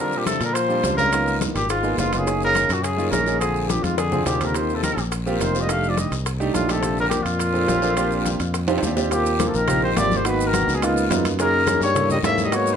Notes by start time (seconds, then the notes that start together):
Already playing: G3 C4 D4 F4
0.00 D3 A#4
0.12 high bongo, high conga, maracas
0.16 A#2 G4
0.26 C3 A4, high bongo, high conga, high timbale, short guiro, maracas
0.41 A#2 D3 A#4, high timbale, short guiro, maracas
0.54 F3 C5, high bongo, high conga, high timbale, long guiro, maracas
0.68 G3 C4 D4 F4, high bongo, high conga, maracas
0.83 C#2 G3 C4 D4 F4, high bongo, low bongo, high conga, high timbale, low timbale, short guiro, maracas
0.97 C#3 G3 C4 D4 F4 A#4, high bongo, high conga, short guiro, maracas
1.12 A#3 B3 D#4 F4, high bongo, high conga, high timbale, long guiro, maracas
1.27 high bongo, high conga, maracas
1.41 high bongo, high conga, high timbale, short guiro, maracas
1.55 G#1 A#2 G4, high conga, high timbale, short guiro, maracas
1.69 G#2 F4, high bongo, high conga, high timbale, long guiro, maracas
1.83 A#3 B3 D#4 G#4, high bongo, high conga, maracas
1.97 F#1 G#2 A#3 B3 D#4 F4, high bongo, low bongo, high conga, high timbale, low timbale, short guiro, maracas
2.12 A#3 B3 D#4 F4, high bongo, high conga, high timbale, short guiro, maracas
2.17 C#3 G#4
2.27 A#3 C#4 D#4 G#4, high bongo, high timbale, long guiro, maracas
2.41 A#4, high bongo, high conga, maracas
2.46 C#3
2.55 high bongo, high conga, high timbale, short guiro, maracas
2.69 F#2 F#4, high timbale, short guiro, maracas
2.73 A#2
2.83 C#3 G#4, high bongo, high conga, high timbale, long guiro, maracas
2.97 A#3 C#4 D#4 F4, high bongo, high conga, maracas
3.11 A#1 C#3 A#3 C#4 D#4 G#4 A#4, high bongo, low bongo, high conga, high timbale, low timbale, short guiro, maracas
3.26 A#3 C#4 D#4 G#4, high bongo, short guiro, maracas
3.39 D3 C4 D4 F4 G#4, high bongo, high conga, high timbale, long guiro, maracas
3.55 high bongo, high conga, maracas
3.68 A#2 G4, high bongo, high conga, high timbale, short guiro, maracas
3.83 F2 G#2 F4, high conga, high timbale, short guiro, maracas
3.97 D3 G#4, high bongo, high timbale, long guiro, maracas
4.11 C4 D4 F4 G#4, low bongo, low conga, maracas
4.26 D#2 A#2 C4 D4 F4 G4 G#4, low bongo, low conga, high timbale, low timbale, short guiro, maracas
4.41 C4 D4 F4 G4, low bongo, low conga, high timbale, short guiro, maracas
4.45 D3 A#4
4.54 D#3 A#3 C4 F4 G4 C5, high bongo, high timbale, long guiro, maracas
4.69 high bongo, high conga, maracas
4.74 C3 A4
4.83 D#3 A#4, high bongo, high conga, high timbale, short guiro, maracas
4.97 A#1, high timbale, short guiro, maracas
5.12 high bongo, high conga, high timbale, long guiro, maracas
5.26 A#3 C4 F4 G4, high bongo, high conga, maracas
5.40 F1 D#3 A#3 C4 F4 A#4 C5, high bongo, low bongo, high conga, high timbale, low timbale, short guiro, maracas
5.54 A#3 C4 F4 G4, high bongo, short guiro, maracas
5.60 G3 D#5
5.69 A3 D4 D#4 G4 F5, high bongo, high conga, high timbale, long guiro, maracas
5.83 high bongo, high conga, maracas
5.88 F3 D5
5.97 G3 D#5, high bongo, high conga, high timbale, short guiro, maracas
6.11 C2, high conga, high timbale, short guiro, maracas
6.26 high bongo, high conga, high timbale, long guiro, maracas
6.40 A3 D4 D#4 G4, high bongo, high conga, maracas
6.53 A#1 A2 A3 D4 D#4 F4 G4, high bongo, low bongo, high conga, high timbale, short guiro, maracas
6.67 A3 D4 D#4 G4, high bongo, high conga, high timbale, short guiro, maracas
6.72 C3 A4
6.81 C4 D4 F4 G4, high bongo, high timbale, long guiro, maracas
6.97 A#4, high bongo, high conga, maracas
7.02 D3
7.09 A#2 G4, high bongo, high conga, high timbale, short guiro, maracas
7.23 F2 A#2 F4, high timbale, short guiro, maracas
7.39 high bongo, high conga, high timbale, long guiro, maracas
7.53 C4 D4 F4 A4, high bongo, high conga, maracas
7.67 A#1 C4 D4 F4 G4, high bongo, low bongo, high conga, high timbale, low timbale, short guiro, maracas
7.82 C4 D4 F4 A4, high bongo, short guiro, maracas
7.97 C4 D4 F4 G4, high bongo, high timbale, long guiro, maracas
8.11 high bongo, high conga, maracas
8.26 high bongo, high conga, high timbale, short guiro, maracas
8.40 F2, high conga, high timbale, short guiro, maracas
8.54 high bongo, high conga, high timbale, long guiro, maracas
8.67 C4 D4 F4 G4, high bongo, high conga, high timbale, maracas
8.78 high timbale
8.82 D#2 C4 D4 F4 G4, low bongo, high conga, short guiro, maracas
8.87 low timbale
8.96 C4 D4 F4 G4, low bongo, high conga, low timbale, short guiro, maracas
9.11 A#2 A#3 C4 F4 G4, high bongo, high conga, high timbale, long guiro, maracas
9.26 high bongo, high conga, maracas
9.39 A#3 C4 F4 A#4, high bongo, high conga, high timbale, low timbale, short guiro, maracas
9.48 C3 A4
9.54 A#1 D#3 A#4, high bongo, high conga, short guiro, maracas
9.67 A#3 C4 F4 G4, high bongo, high conga, low conga, high timbale, long guiro, maracas
9.83 D#3 C5, high conga
9.96 G#1 F3 A#3 C4 F4 G4 D5, high bongo, low bongo, high conga, high timbale, low timbale, short guiro, maracas
10.11 high bongo, high conga, short guiro, maracas
10.17 D#3 C5
10.25 D#3 A#3 B3 D#4 F#4 B4, high bongo, high conga, high timbale, long guiro, maracas
10.40 high conga, maracas
10.46 D#3 A#4
10.53 A#3 B3 D#4 F#4, high bongo, high conga, high timbale, low timbale, short guiro, maracas
10.68 C#2, high bongo, short guiro, maracas
10.75 B2 G#4
10.82 G#2 A#3 B3 D#4 F4, high bongo, high conga, high timbale, long guiro, maracas
10.96 high bongo, high conga, maracas
11.10 F#2 A#3 B3 D#4 F4, high bongo, low bongo, high conga, high timbale, low timbale, short guiro, maracas
11.25 high bongo, high conga, high timbale, short guiro, maracas
11.39 C#3 A#3 C#4 D#4 G#4 A#4, high bongo, high conga, high timbale, long guiro, maracas
11.53 high bongo, high conga
11.66 A#3 C#4 D#4 G#4, high bongo, high conga, high timbale, low timbale, short guiro, maracas
11.81 G2 G3 C#5, high conga, short guiro, maracas
11.94 A#3 C#4 E4 A4, high bongo, high conga, low conga, high timbale, long guiro, maracas
12.09 G3 D#5, high conga, low conga, maracas
12.23 G#2 A#3 C#4 E4 A4 E5, high bongo, low bongo, high conga, high timbale, low timbale, short guiro, maracas
12.38 high bongo, high conga, short guiro, maracas
12.44 G3 D#5
12.51 A#3 B3 D#4 F#4 C#5, high bongo, high conga, high timbale, long guiro, maracas
12.56 F#3
12.66 high conga, maracas